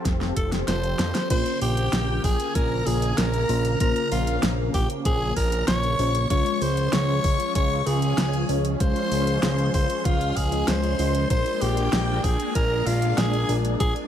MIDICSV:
0, 0, Header, 1, 7, 480
1, 0, Start_track
1, 0, Tempo, 625000
1, 1001, Time_signature, 4, 2, 24, 8
1, 10808, End_track
2, 0, Start_track
2, 0, Title_t, "String machine"
2, 0, Program_c, 0, 50
2, 1002, Note_on_c, 0, 84, 101
2, 1225, Note_off_c, 0, 84, 0
2, 1241, Note_on_c, 0, 79, 106
2, 1690, Note_off_c, 0, 79, 0
2, 1720, Note_on_c, 0, 80, 97
2, 1944, Note_off_c, 0, 80, 0
2, 1962, Note_on_c, 0, 82, 102
2, 2185, Note_off_c, 0, 82, 0
2, 2201, Note_on_c, 0, 80, 98
2, 2424, Note_off_c, 0, 80, 0
2, 2441, Note_on_c, 0, 82, 102
2, 2891, Note_off_c, 0, 82, 0
2, 2922, Note_on_c, 0, 82, 107
2, 3145, Note_off_c, 0, 82, 0
2, 3162, Note_on_c, 0, 77, 95
2, 3415, Note_off_c, 0, 77, 0
2, 3643, Note_on_c, 0, 79, 96
2, 3751, Note_off_c, 0, 79, 0
2, 3882, Note_on_c, 0, 80, 105
2, 4105, Note_off_c, 0, 80, 0
2, 4122, Note_on_c, 0, 82, 105
2, 4345, Note_off_c, 0, 82, 0
2, 4361, Note_on_c, 0, 85, 116
2, 4810, Note_off_c, 0, 85, 0
2, 4842, Note_on_c, 0, 85, 107
2, 5065, Note_off_c, 0, 85, 0
2, 5082, Note_on_c, 0, 84, 115
2, 5305, Note_off_c, 0, 84, 0
2, 5321, Note_on_c, 0, 85, 108
2, 5771, Note_off_c, 0, 85, 0
2, 5802, Note_on_c, 0, 85, 106
2, 6025, Note_off_c, 0, 85, 0
2, 6044, Note_on_c, 0, 80, 94
2, 6492, Note_off_c, 0, 80, 0
2, 6764, Note_on_c, 0, 84, 99
2, 7452, Note_off_c, 0, 84, 0
2, 7483, Note_on_c, 0, 84, 96
2, 7705, Note_off_c, 0, 84, 0
2, 7724, Note_on_c, 0, 77, 89
2, 7946, Note_off_c, 0, 77, 0
2, 7963, Note_on_c, 0, 80, 90
2, 8186, Note_off_c, 0, 80, 0
2, 8203, Note_on_c, 0, 84, 101
2, 8651, Note_off_c, 0, 84, 0
2, 8682, Note_on_c, 0, 84, 98
2, 8905, Note_off_c, 0, 84, 0
2, 8922, Note_on_c, 0, 79, 108
2, 9371, Note_off_c, 0, 79, 0
2, 9402, Note_on_c, 0, 80, 95
2, 9625, Note_off_c, 0, 80, 0
2, 9641, Note_on_c, 0, 82, 98
2, 9864, Note_off_c, 0, 82, 0
2, 9882, Note_on_c, 0, 77, 90
2, 10105, Note_off_c, 0, 77, 0
2, 10122, Note_on_c, 0, 80, 102
2, 10375, Note_off_c, 0, 80, 0
2, 10602, Note_on_c, 0, 80, 100
2, 10710, Note_off_c, 0, 80, 0
2, 10808, End_track
3, 0, Start_track
3, 0, Title_t, "Tenor saxophone"
3, 0, Program_c, 1, 66
3, 281, Note_on_c, 1, 69, 85
3, 389, Note_off_c, 1, 69, 0
3, 521, Note_on_c, 1, 72, 101
3, 970, Note_off_c, 1, 72, 0
3, 1002, Note_on_c, 1, 72, 99
3, 1225, Note_off_c, 1, 72, 0
3, 1242, Note_on_c, 1, 67, 95
3, 1691, Note_off_c, 1, 67, 0
3, 1721, Note_on_c, 1, 68, 93
3, 1960, Note_on_c, 1, 70, 100
3, 1972, Note_off_c, 1, 68, 0
3, 2200, Note_on_c, 1, 68, 93
3, 2211, Note_off_c, 1, 70, 0
3, 2441, Note_on_c, 1, 70, 106
3, 2452, Note_off_c, 1, 68, 0
3, 2916, Note_off_c, 1, 70, 0
3, 2920, Note_on_c, 1, 70, 104
3, 3144, Note_off_c, 1, 70, 0
3, 3161, Note_on_c, 1, 65, 94
3, 3415, Note_off_c, 1, 65, 0
3, 3640, Note_on_c, 1, 67, 96
3, 3749, Note_off_c, 1, 67, 0
3, 3882, Note_on_c, 1, 68, 102
3, 4105, Note_off_c, 1, 68, 0
3, 4121, Note_on_c, 1, 70, 101
3, 4344, Note_off_c, 1, 70, 0
3, 4361, Note_on_c, 1, 73, 119
3, 4810, Note_off_c, 1, 73, 0
3, 4839, Note_on_c, 1, 73, 112
3, 5080, Note_on_c, 1, 72, 103
3, 5092, Note_off_c, 1, 73, 0
3, 5321, Note_on_c, 1, 73, 114
3, 5332, Note_off_c, 1, 72, 0
3, 5795, Note_off_c, 1, 73, 0
3, 5800, Note_on_c, 1, 73, 107
3, 6041, Note_on_c, 1, 68, 96
3, 6053, Note_off_c, 1, 73, 0
3, 6521, Note_off_c, 1, 68, 0
3, 6762, Note_on_c, 1, 72, 101
3, 7451, Note_off_c, 1, 72, 0
3, 7482, Note_on_c, 1, 72, 92
3, 7722, Note_on_c, 1, 65, 88
3, 7733, Note_off_c, 1, 72, 0
3, 7961, Note_on_c, 1, 68, 92
3, 7973, Note_off_c, 1, 65, 0
3, 8201, Note_on_c, 1, 72, 100
3, 8213, Note_off_c, 1, 68, 0
3, 8676, Note_off_c, 1, 72, 0
3, 8681, Note_on_c, 1, 72, 101
3, 8921, Note_on_c, 1, 67, 99
3, 8932, Note_off_c, 1, 72, 0
3, 9401, Note_on_c, 1, 68, 90
3, 9413, Note_off_c, 1, 67, 0
3, 9636, Note_off_c, 1, 68, 0
3, 9641, Note_on_c, 1, 70, 100
3, 9881, Note_on_c, 1, 65, 91
3, 9892, Note_off_c, 1, 70, 0
3, 10121, Note_on_c, 1, 68, 104
3, 10132, Note_off_c, 1, 65, 0
3, 10394, Note_off_c, 1, 68, 0
3, 10601, Note_on_c, 1, 68, 98
3, 10709, Note_off_c, 1, 68, 0
3, 10808, End_track
4, 0, Start_track
4, 0, Title_t, "FM electric piano"
4, 0, Program_c, 2, 5
4, 1001, Note_on_c, 2, 65, 85
4, 1002, Note_on_c, 2, 58, 95
4, 1002, Note_on_c, 2, 61, 85
4, 1002, Note_on_c, 2, 72, 102
4, 2653, Note_off_c, 2, 58, 0
4, 2653, Note_off_c, 2, 61, 0
4, 2653, Note_off_c, 2, 65, 0
4, 2653, Note_off_c, 2, 72, 0
4, 2681, Note_on_c, 2, 58, 81
4, 2681, Note_on_c, 2, 61, 74
4, 2681, Note_on_c, 2, 65, 74
4, 2681, Note_on_c, 2, 72, 88
4, 2892, Note_off_c, 2, 58, 0
4, 2892, Note_off_c, 2, 61, 0
4, 2892, Note_off_c, 2, 65, 0
4, 2892, Note_off_c, 2, 72, 0
4, 2921, Note_on_c, 2, 58, 97
4, 2921, Note_on_c, 2, 61, 89
4, 2921, Note_on_c, 2, 65, 87
4, 2921, Note_on_c, 2, 72, 104
4, 4572, Note_off_c, 2, 58, 0
4, 4572, Note_off_c, 2, 65, 0
4, 4572, Note_off_c, 2, 72, 0
4, 4573, Note_off_c, 2, 61, 0
4, 4601, Note_on_c, 2, 58, 82
4, 4601, Note_on_c, 2, 61, 76
4, 4601, Note_on_c, 2, 65, 75
4, 4601, Note_on_c, 2, 72, 88
4, 4812, Note_off_c, 2, 65, 0
4, 4812, Note_off_c, 2, 72, 0
4, 4813, Note_off_c, 2, 58, 0
4, 4813, Note_off_c, 2, 61, 0
4, 4841, Note_on_c, 2, 61, 89
4, 4842, Note_on_c, 2, 56, 98
4, 4842, Note_on_c, 2, 65, 86
4, 4842, Note_on_c, 2, 77, 106
4, 6493, Note_off_c, 2, 56, 0
4, 6493, Note_off_c, 2, 61, 0
4, 6493, Note_off_c, 2, 65, 0
4, 6493, Note_off_c, 2, 77, 0
4, 6521, Note_on_c, 2, 56, 83
4, 6521, Note_on_c, 2, 61, 72
4, 6521, Note_on_c, 2, 65, 75
4, 6522, Note_on_c, 2, 73, 88
4, 6732, Note_off_c, 2, 56, 0
4, 6733, Note_off_c, 2, 61, 0
4, 6733, Note_off_c, 2, 65, 0
4, 6733, Note_off_c, 2, 73, 0
4, 6761, Note_on_c, 2, 56, 96
4, 6761, Note_on_c, 2, 77, 105
4, 6762, Note_on_c, 2, 61, 86
4, 6762, Note_on_c, 2, 65, 85
4, 8057, Note_off_c, 2, 56, 0
4, 8057, Note_off_c, 2, 61, 0
4, 8057, Note_off_c, 2, 65, 0
4, 8057, Note_off_c, 2, 77, 0
4, 8081, Note_on_c, 2, 56, 74
4, 8081, Note_on_c, 2, 61, 68
4, 8081, Note_on_c, 2, 65, 68
4, 8081, Note_on_c, 2, 75, 80
4, 8413, Note_off_c, 2, 56, 0
4, 8413, Note_off_c, 2, 61, 0
4, 8413, Note_off_c, 2, 65, 0
4, 8413, Note_off_c, 2, 75, 0
4, 8441, Note_on_c, 2, 56, 92
4, 8441, Note_on_c, 2, 61, 86
4, 8441, Note_on_c, 2, 65, 82
4, 8441, Note_on_c, 2, 75, 104
4, 8652, Note_off_c, 2, 75, 0
4, 8653, Note_off_c, 2, 56, 0
4, 8653, Note_off_c, 2, 61, 0
4, 8653, Note_off_c, 2, 65, 0
4, 8681, Note_on_c, 2, 65, 86
4, 8681, Note_on_c, 2, 70, 104
4, 8682, Note_on_c, 2, 56, 92
4, 8682, Note_on_c, 2, 62, 85
4, 10333, Note_off_c, 2, 56, 0
4, 10333, Note_off_c, 2, 62, 0
4, 10333, Note_off_c, 2, 65, 0
4, 10333, Note_off_c, 2, 70, 0
4, 10361, Note_on_c, 2, 56, 81
4, 10361, Note_on_c, 2, 62, 75
4, 10361, Note_on_c, 2, 65, 73
4, 10361, Note_on_c, 2, 70, 91
4, 10572, Note_off_c, 2, 56, 0
4, 10572, Note_off_c, 2, 62, 0
4, 10572, Note_off_c, 2, 65, 0
4, 10572, Note_off_c, 2, 70, 0
4, 10600, Note_on_c, 2, 56, 94
4, 10600, Note_on_c, 2, 70, 108
4, 10601, Note_on_c, 2, 62, 86
4, 10601, Note_on_c, 2, 65, 87
4, 10808, Note_off_c, 2, 56, 0
4, 10808, Note_off_c, 2, 62, 0
4, 10808, Note_off_c, 2, 65, 0
4, 10808, Note_off_c, 2, 70, 0
4, 10808, End_track
5, 0, Start_track
5, 0, Title_t, "Analog synth pad"
5, 0, Program_c, 3, 89
5, 0, Note_on_c, 3, 53, 80
5, 0, Note_on_c, 3, 60, 76
5, 0, Note_on_c, 3, 67, 71
5, 0, Note_on_c, 3, 69, 73
5, 0, Note_on_c, 3, 77, 87
5, 970, Note_off_c, 3, 67, 0
5, 970, Note_off_c, 3, 77, 0
5, 981, Note_off_c, 3, 69, 0
5, 982, Note_off_c, 3, 53, 0
5, 982, Note_off_c, 3, 60, 0
5, 1001, Note_on_c, 3, 49, 78
5, 1001, Note_on_c, 3, 58, 72
5, 4810, Note_off_c, 3, 49, 0
5, 4811, Note_off_c, 3, 58, 0
5, 4841, Note_on_c, 3, 53, 80
5, 4841, Note_on_c, 3, 56, 76
5, 4842, Note_on_c, 3, 61, 89
5, 8650, Note_off_c, 3, 53, 0
5, 8651, Note_off_c, 3, 61, 0
5, 8681, Note_on_c, 3, 58, 73
5, 8682, Note_on_c, 3, 62, 88
5, 10582, Note_off_c, 3, 58, 0
5, 10601, Note_on_c, 3, 60, 75
5, 10808, Note_off_c, 3, 56, 0
5, 10808, Note_off_c, 3, 60, 0
5, 10808, Note_off_c, 3, 62, 0
5, 10808, End_track
6, 0, Start_track
6, 0, Title_t, "Analog synth bass"
6, 0, Program_c, 4, 38
6, 40, Note_on_c, 4, 29, 97
6, 248, Note_off_c, 4, 29, 0
6, 280, Note_on_c, 4, 29, 100
6, 488, Note_off_c, 4, 29, 0
6, 521, Note_on_c, 4, 29, 87
6, 728, Note_off_c, 4, 29, 0
6, 761, Note_on_c, 4, 41, 91
6, 865, Note_off_c, 4, 41, 0
6, 1001, Note_on_c, 4, 34, 102
6, 1105, Note_off_c, 4, 34, 0
6, 1241, Note_on_c, 4, 34, 103
6, 1448, Note_off_c, 4, 34, 0
6, 1480, Note_on_c, 4, 34, 89
6, 1688, Note_off_c, 4, 34, 0
6, 1721, Note_on_c, 4, 34, 101
6, 1825, Note_off_c, 4, 34, 0
6, 1960, Note_on_c, 4, 34, 100
6, 2168, Note_off_c, 4, 34, 0
6, 2200, Note_on_c, 4, 34, 104
6, 2408, Note_off_c, 4, 34, 0
6, 2441, Note_on_c, 4, 34, 89
6, 2648, Note_off_c, 4, 34, 0
6, 2681, Note_on_c, 4, 34, 102
6, 2888, Note_off_c, 4, 34, 0
6, 2921, Note_on_c, 4, 34, 100
6, 3025, Note_off_c, 4, 34, 0
6, 3161, Note_on_c, 4, 34, 100
6, 3368, Note_off_c, 4, 34, 0
6, 3401, Note_on_c, 4, 34, 91
6, 3608, Note_off_c, 4, 34, 0
6, 3641, Note_on_c, 4, 34, 101
6, 3745, Note_off_c, 4, 34, 0
6, 3881, Note_on_c, 4, 34, 96
6, 4088, Note_off_c, 4, 34, 0
6, 4121, Note_on_c, 4, 34, 101
6, 4328, Note_off_c, 4, 34, 0
6, 4361, Note_on_c, 4, 34, 89
6, 4568, Note_off_c, 4, 34, 0
6, 4601, Note_on_c, 4, 34, 101
6, 4808, Note_off_c, 4, 34, 0
6, 4841, Note_on_c, 4, 37, 102
6, 4945, Note_off_c, 4, 37, 0
6, 5080, Note_on_c, 4, 37, 99
6, 5288, Note_off_c, 4, 37, 0
6, 5320, Note_on_c, 4, 37, 94
6, 5528, Note_off_c, 4, 37, 0
6, 5561, Note_on_c, 4, 37, 102
6, 5665, Note_off_c, 4, 37, 0
6, 5801, Note_on_c, 4, 37, 97
6, 6008, Note_off_c, 4, 37, 0
6, 6041, Note_on_c, 4, 37, 103
6, 6248, Note_off_c, 4, 37, 0
6, 6280, Note_on_c, 4, 37, 90
6, 6488, Note_off_c, 4, 37, 0
6, 6520, Note_on_c, 4, 37, 97
6, 6728, Note_off_c, 4, 37, 0
6, 6761, Note_on_c, 4, 37, 102
6, 6865, Note_off_c, 4, 37, 0
6, 7000, Note_on_c, 4, 37, 98
6, 7208, Note_off_c, 4, 37, 0
6, 7241, Note_on_c, 4, 37, 94
6, 7448, Note_off_c, 4, 37, 0
6, 7481, Note_on_c, 4, 37, 102
6, 7585, Note_off_c, 4, 37, 0
6, 7721, Note_on_c, 4, 37, 99
6, 7928, Note_off_c, 4, 37, 0
6, 7961, Note_on_c, 4, 37, 102
6, 8168, Note_off_c, 4, 37, 0
6, 8201, Note_on_c, 4, 37, 89
6, 8408, Note_off_c, 4, 37, 0
6, 8441, Note_on_c, 4, 37, 99
6, 8648, Note_off_c, 4, 37, 0
6, 8681, Note_on_c, 4, 34, 102
6, 8785, Note_off_c, 4, 34, 0
6, 8921, Note_on_c, 4, 34, 101
6, 9128, Note_off_c, 4, 34, 0
6, 9161, Note_on_c, 4, 34, 91
6, 9368, Note_off_c, 4, 34, 0
6, 9400, Note_on_c, 4, 34, 99
6, 9504, Note_off_c, 4, 34, 0
6, 9640, Note_on_c, 4, 34, 99
6, 9848, Note_off_c, 4, 34, 0
6, 9880, Note_on_c, 4, 34, 107
6, 10088, Note_off_c, 4, 34, 0
6, 10120, Note_on_c, 4, 34, 87
6, 10328, Note_off_c, 4, 34, 0
6, 10360, Note_on_c, 4, 34, 99
6, 10568, Note_off_c, 4, 34, 0
6, 10600, Note_on_c, 4, 34, 101
6, 10704, Note_off_c, 4, 34, 0
6, 10808, End_track
7, 0, Start_track
7, 0, Title_t, "Drums"
7, 41, Note_on_c, 9, 36, 117
7, 41, Note_on_c, 9, 38, 60
7, 41, Note_on_c, 9, 42, 78
7, 118, Note_off_c, 9, 36, 0
7, 118, Note_off_c, 9, 38, 0
7, 118, Note_off_c, 9, 42, 0
7, 161, Note_on_c, 9, 38, 57
7, 237, Note_off_c, 9, 38, 0
7, 281, Note_on_c, 9, 36, 60
7, 281, Note_on_c, 9, 42, 80
7, 357, Note_off_c, 9, 42, 0
7, 358, Note_off_c, 9, 36, 0
7, 401, Note_on_c, 9, 38, 67
7, 401, Note_on_c, 9, 42, 53
7, 478, Note_off_c, 9, 38, 0
7, 478, Note_off_c, 9, 42, 0
7, 521, Note_on_c, 9, 38, 85
7, 521, Note_on_c, 9, 42, 78
7, 598, Note_off_c, 9, 38, 0
7, 598, Note_off_c, 9, 42, 0
7, 641, Note_on_c, 9, 42, 37
7, 718, Note_off_c, 9, 42, 0
7, 760, Note_on_c, 9, 38, 97
7, 760, Note_on_c, 9, 42, 78
7, 837, Note_off_c, 9, 38, 0
7, 837, Note_off_c, 9, 42, 0
7, 881, Note_on_c, 9, 38, 88
7, 881, Note_on_c, 9, 42, 53
7, 957, Note_off_c, 9, 38, 0
7, 957, Note_off_c, 9, 42, 0
7, 1001, Note_on_c, 9, 36, 120
7, 1001, Note_on_c, 9, 42, 83
7, 1001, Note_on_c, 9, 49, 100
7, 1078, Note_off_c, 9, 36, 0
7, 1078, Note_off_c, 9, 42, 0
7, 1078, Note_off_c, 9, 49, 0
7, 1121, Note_on_c, 9, 42, 39
7, 1198, Note_off_c, 9, 42, 0
7, 1240, Note_on_c, 9, 46, 80
7, 1317, Note_off_c, 9, 46, 0
7, 1361, Note_on_c, 9, 42, 52
7, 1438, Note_off_c, 9, 42, 0
7, 1481, Note_on_c, 9, 38, 123
7, 1481, Note_on_c, 9, 42, 83
7, 1558, Note_off_c, 9, 38, 0
7, 1558, Note_off_c, 9, 42, 0
7, 1721, Note_on_c, 9, 36, 107
7, 1721, Note_on_c, 9, 46, 76
7, 1798, Note_off_c, 9, 36, 0
7, 1798, Note_off_c, 9, 46, 0
7, 1841, Note_on_c, 9, 42, 56
7, 1918, Note_off_c, 9, 42, 0
7, 1961, Note_on_c, 9, 36, 124
7, 1961, Note_on_c, 9, 42, 84
7, 2038, Note_off_c, 9, 36, 0
7, 2038, Note_off_c, 9, 42, 0
7, 2201, Note_on_c, 9, 46, 82
7, 2278, Note_off_c, 9, 46, 0
7, 2321, Note_on_c, 9, 42, 55
7, 2398, Note_off_c, 9, 42, 0
7, 2441, Note_on_c, 9, 38, 124
7, 2441, Note_on_c, 9, 42, 84
7, 2518, Note_off_c, 9, 38, 0
7, 2518, Note_off_c, 9, 42, 0
7, 2562, Note_on_c, 9, 42, 37
7, 2638, Note_off_c, 9, 42, 0
7, 2681, Note_on_c, 9, 46, 78
7, 2758, Note_off_c, 9, 46, 0
7, 2801, Note_on_c, 9, 42, 55
7, 2878, Note_off_c, 9, 42, 0
7, 2921, Note_on_c, 9, 36, 124
7, 2922, Note_on_c, 9, 42, 82
7, 2998, Note_off_c, 9, 36, 0
7, 2998, Note_off_c, 9, 42, 0
7, 3041, Note_on_c, 9, 42, 40
7, 3118, Note_off_c, 9, 42, 0
7, 3161, Note_on_c, 9, 46, 78
7, 3238, Note_off_c, 9, 46, 0
7, 3281, Note_on_c, 9, 42, 54
7, 3358, Note_off_c, 9, 42, 0
7, 3401, Note_on_c, 9, 38, 127
7, 3401, Note_on_c, 9, 42, 85
7, 3478, Note_off_c, 9, 38, 0
7, 3478, Note_off_c, 9, 42, 0
7, 3641, Note_on_c, 9, 36, 111
7, 3641, Note_on_c, 9, 46, 71
7, 3718, Note_off_c, 9, 36, 0
7, 3718, Note_off_c, 9, 46, 0
7, 3761, Note_on_c, 9, 42, 57
7, 3838, Note_off_c, 9, 42, 0
7, 3881, Note_on_c, 9, 36, 126
7, 3881, Note_on_c, 9, 42, 85
7, 3958, Note_off_c, 9, 36, 0
7, 3958, Note_off_c, 9, 42, 0
7, 4121, Note_on_c, 9, 36, 64
7, 4121, Note_on_c, 9, 46, 77
7, 4197, Note_off_c, 9, 46, 0
7, 4198, Note_off_c, 9, 36, 0
7, 4241, Note_on_c, 9, 42, 56
7, 4318, Note_off_c, 9, 42, 0
7, 4361, Note_on_c, 9, 38, 126
7, 4361, Note_on_c, 9, 42, 86
7, 4438, Note_off_c, 9, 38, 0
7, 4438, Note_off_c, 9, 42, 0
7, 4481, Note_on_c, 9, 42, 38
7, 4558, Note_off_c, 9, 42, 0
7, 4601, Note_on_c, 9, 46, 74
7, 4678, Note_off_c, 9, 46, 0
7, 4721, Note_on_c, 9, 42, 54
7, 4798, Note_off_c, 9, 42, 0
7, 4841, Note_on_c, 9, 36, 126
7, 4841, Note_on_c, 9, 42, 82
7, 4918, Note_off_c, 9, 36, 0
7, 4918, Note_off_c, 9, 42, 0
7, 4961, Note_on_c, 9, 42, 37
7, 5038, Note_off_c, 9, 42, 0
7, 5081, Note_on_c, 9, 46, 76
7, 5158, Note_off_c, 9, 46, 0
7, 5201, Note_on_c, 9, 42, 52
7, 5278, Note_off_c, 9, 42, 0
7, 5321, Note_on_c, 9, 38, 127
7, 5321, Note_on_c, 9, 42, 82
7, 5398, Note_off_c, 9, 38, 0
7, 5398, Note_off_c, 9, 42, 0
7, 5561, Note_on_c, 9, 36, 115
7, 5561, Note_on_c, 9, 46, 71
7, 5638, Note_off_c, 9, 36, 0
7, 5638, Note_off_c, 9, 46, 0
7, 5681, Note_on_c, 9, 42, 54
7, 5758, Note_off_c, 9, 42, 0
7, 5801, Note_on_c, 9, 36, 127
7, 5801, Note_on_c, 9, 42, 83
7, 5878, Note_off_c, 9, 36, 0
7, 5878, Note_off_c, 9, 42, 0
7, 6041, Note_on_c, 9, 46, 76
7, 6118, Note_off_c, 9, 46, 0
7, 6161, Note_on_c, 9, 42, 55
7, 6238, Note_off_c, 9, 42, 0
7, 6281, Note_on_c, 9, 38, 127
7, 6281, Note_on_c, 9, 42, 83
7, 6358, Note_off_c, 9, 38, 0
7, 6358, Note_off_c, 9, 42, 0
7, 6401, Note_on_c, 9, 42, 38
7, 6478, Note_off_c, 9, 42, 0
7, 6521, Note_on_c, 9, 46, 75
7, 6598, Note_off_c, 9, 46, 0
7, 6641, Note_on_c, 9, 42, 54
7, 6717, Note_off_c, 9, 42, 0
7, 6761, Note_on_c, 9, 36, 124
7, 6761, Note_on_c, 9, 42, 79
7, 6838, Note_off_c, 9, 36, 0
7, 6838, Note_off_c, 9, 42, 0
7, 6881, Note_on_c, 9, 42, 36
7, 6958, Note_off_c, 9, 42, 0
7, 7001, Note_on_c, 9, 46, 78
7, 7078, Note_off_c, 9, 46, 0
7, 7121, Note_on_c, 9, 42, 50
7, 7198, Note_off_c, 9, 42, 0
7, 7241, Note_on_c, 9, 38, 127
7, 7241, Note_on_c, 9, 42, 81
7, 7318, Note_off_c, 9, 38, 0
7, 7318, Note_off_c, 9, 42, 0
7, 7361, Note_on_c, 9, 42, 37
7, 7438, Note_off_c, 9, 42, 0
7, 7481, Note_on_c, 9, 36, 114
7, 7481, Note_on_c, 9, 46, 74
7, 7558, Note_off_c, 9, 36, 0
7, 7558, Note_off_c, 9, 46, 0
7, 7601, Note_on_c, 9, 42, 52
7, 7678, Note_off_c, 9, 42, 0
7, 7721, Note_on_c, 9, 36, 127
7, 7721, Note_on_c, 9, 42, 77
7, 7797, Note_off_c, 9, 42, 0
7, 7798, Note_off_c, 9, 36, 0
7, 7841, Note_on_c, 9, 42, 37
7, 7918, Note_off_c, 9, 42, 0
7, 7961, Note_on_c, 9, 36, 63
7, 7961, Note_on_c, 9, 46, 78
7, 8038, Note_off_c, 9, 36, 0
7, 8038, Note_off_c, 9, 46, 0
7, 8081, Note_on_c, 9, 42, 53
7, 8158, Note_off_c, 9, 42, 0
7, 8201, Note_on_c, 9, 38, 127
7, 8201, Note_on_c, 9, 42, 82
7, 8278, Note_off_c, 9, 38, 0
7, 8278, Note_off_c, 9, 42, 0
7, 8321, Note_on_c, 9, 42, 37
7, 8398, Note_off_c, 9, 42, 0
7, 8441, Note_on_c, 9, 46, 75
7, 8517, Note_off_c, 9, 46, 0
7, 8560, Note_on_c, 9, 42, 53
7, 8637, Note_off_c, 9, 42, 0
7, 8680, Note_on_c, 9, 42, 75
7, 8681, Note_on_c, 9, 36, 118
7, 8757, Note_off_c, 9, 42, 0
7, 8758, Note_off_c, 9, 36, 0
7, 8800, Note_on_c, 9, 42, 37
7, 8877, Note_off_c, 9, 42, 0
7, 8920, Note_on_c, 9, 46, 78
7, 8997, Note_off_c, 9, 46, 0
7, 9040, Note_on_c, 9, 42, 50
7, 9117, Note_off_c, 9, 42, 0
7, 9160, Note_on_c, 9, 38, 127
7, 9160, Note_on_c, 9, 42, 79
7, 9237, Note_off_c, 9, 38, 0
7, 9237, Note_off_c, 9, 42, 0
7, 9401, Note_on_c, 9, 36, 107
7, 9401, Note_on_c, 9, 46, 80
7, 9477, Note_off_c, 9, 36, 0
7, 9477, Note_off_c, 9, 46, 0
7, 9521, Note_on_c, 9, 42, 52
7, 9598, Note_off_c, 9, 42, 0
7, 9641, Note_on_c, 9, 36, 121
7, 9641, Note_on_c, 9, 42, 76
7, 9717, Note_off_c, 9, 36, 0
7, 9718, Note_off_c, 9, 42, 0
7, 9881, Note_on_c, 9, 46, 80
7, 9957, Note_off_c, 9, 46, 0
7, 10000, Note_on_c, 9, 42, 50
7, 10077, Note_off_c, 9, 42, 0
7, 10121, Note_on_c, 9, 38, 126
7, 10121, Note_on_c, 9, 42, 77
7, 10198, Note_off_c, 9, 38, 0
7, 10198, Note_off_c, 9, 42, 0
7, 10241, Note_on_c, 9, 42, 35
7, 10318, Note_off_c, 9, 42, 0
7, 10361, Note_on_c, 9, 46, 79
7, 10438, Note_off_c, 9, 46, 0
7, 10481, Note_on_c, 9, 42, 51
7, 10557, Note_off_c, 9, 42, 0
7, 10600, Note_on_c, 9, 42, 77
7, 10601, Note_on_c, 9, 36, 116
7, 10677, Note_off_c, 9, 36, 0
7, 10677, Note_off_c, 9, 42, 0
7, 10721, Note_on_c, 9, 42, 35
7, 10798, Note_off_c, 9, 42, 0
7, 10808, End_track
0, 0, End_of_file